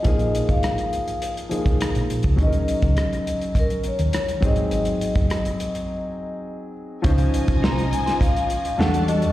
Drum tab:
HH |xxxxxxxxxxxxxxxx|xxxxxxxxxxxxxxxx|xxxxxxxx--------|xxxx-xxxxxxx-xxx|
SD |----r-------r---|----r-------r---|----r-----------|----o--o----o---|
BD |o--o-------o---o|o--o----o-----o-|---o------------|o--o----o-------|